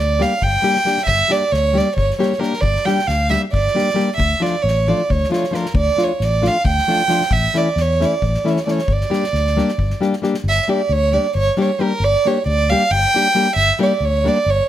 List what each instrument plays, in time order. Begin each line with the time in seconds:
Already playing: fingered electric bass D2, violin D5
0.19 nylon-string guitar G3 A#3 D4 G4, violin F5, snare
0.42 fingered electric bass G1, violin G5, kick
0.62 nylon-string guitar G3 A#3 D4 G4
0.76 snare
0.85 nylon-string guitar G3 A#3 D4 G4, snare
0.97 snare
1.06 fingered electric bass G1, violin E5, kick
1.28 nylon-string guitar G3 A#3 D4 G4, violin D5, snare
1.52 fingered electric bass D2, violin C#5, snare
1.73 nylon-string guitar G3 A#3 D4 G4
1.78 violin D5, snare
1.96 fingered electric bass G1, violin C#5, kick
2.10 snare
2.19 nylon-string guitar G3 A#3 D4 G4, violin C#5, snare
2.33 snare
2.38 nylon-string guitar G3 A#3 D4 G4, violin A#4
2.43 snare
2.53 snare
2.61 fingered electric bass G1, violin D5, kick
2.76 snare
2.85 nylon-string guitar G3 A#3 D4 G4, violin G5, snare
2.99 snare
3.07 fingered electric bass D2, violin F5, snare
3.30 nylon-string guitar G3 A#3 D4 G4, violin E5, snare
3.53 fingered electric bass G1, violin D5, kick
3.67 snare
3.75 nylon-string guitar G3 A#3 D4 G4
3.79 snare
3.90 snare
3.94 nylon-string guitar G3 A#3 D4 G4
4.00 snare
4.17 fingered electric bass D2, violin E5, kick
4.40 nylon-string guitar F3 A3 D4 F4, violin D5
4.45 snare
4.62 fingered electric bass A1, violin C#5
4.68 snare
4.88 nylon-string guitar F3 A3 D4 F4, violin D5
5.10 fingered electric bass D2, violin C#5, kick
5.24 snare
5.30 nylon-string guitar F3 A3 D4 F4, snare
5.34 violin C#5
5.44 snare
5.51 nylon-string guitar F3 A3 D4 F4, snare
5.55 violin A#4
5.66 snare
5.74 fingered electric bass D2, violin D5, kick
5.96 nylon-string guitar F3 A3 D4 F4, snare
6.03 violin C#5
6.20 fingered electric bass A1, snare
6.24 violin D5
6.42 nylon-string guitar F3 A3 D4 F4, snare
6.48 violin F5
6.64 fingered electric bass D2, violin G5, kick
6.78 snare
6.88 nylon-string guitar F3 A3 D4 F4
7.08 nylon-string guitar F3 A3 D4 F4, snare
7.21 snare
7.31 fingered electric bass A1, violin E5, kick
7.54 nylon-string guitar E3 A3 C#4 E4, violin D5, snare
7.76 fingered electric bass E2, snare
7.81 violin C#5
8.00 nylon-string guitar E3 A3 C#4 E4, snare
8.05 violin D5
8.22 fingered electric bass A1, kick
8.34 snare
8.44 nylon-string guitar E3 A3 C#4 E4, snare
8.50 violin C#5
8.56 snare
8.65 nylon-string guitar E3 A3 C#4 E4, violin D5, snare
8.71 violin C#5
8.78 snare
8.88 fingered electric bass G1, kick
8.92 violin D5
9.01 snare
9.10 nylon-string guitar G3 A#3 D4 G4, snare
9.24 snare
9.33 fingered electric bass D2, snare
9.47 snare
9.57 nylon-string guitar G3 A#3 D4 G4, snare
9.68 snare
9.78 fingered electric bass G1, kick
9.90 snare
10.01 nylon-string guitar G3 A#3 D4 G4, snare
10.13 snare
10.22 nylon-string guitar G3 A#3 D4 G4, snare
10.34 snare
10.44 fingered electric bass G1
10.49 violin E5
10.63 violin E5
10.68 nylon-string guitar G3 A#3 D4 G4, violin D5
10.89 fingered electric bass D2, violin C#5
11.12 nylon-string guitar G3 A#3 D4 G4, violin D5
11.35 fingered electric bass G1, violin C#5
11.57 nylon-string guitar G3 A#3 D4 G4
11.62 violin C#5
11.79 nylon-string guitar G3 A#3 D4 G4, violin A#4
12.00 fingered electric bass G1
12.04 violin D5
12.25 nylon-string guitar G3 A#3 D4 G4, violin C#5
12.46 fingered electric bass D2, violin D5
12.70 nylon-string guitar G3 A#3 D4 G4, violin F5
12.91 fingered electric bass G1, violin G5
13.14 nylon-string guitar G3 A#3 D4 G4
13.35 nylon-string guitar G3 A#3 D4 G4
13.56 fingered electric bass G1, violin E5
13.79 nylon-string guitar G3 A#3 D4 G4, violin D5
14.01 fingered electric bass D2
14.05 violin C#5
14.24 nylon-string guitar G3 A#3 D4 G4, violin D5
14.46 fingered electric bass G1, violin C#5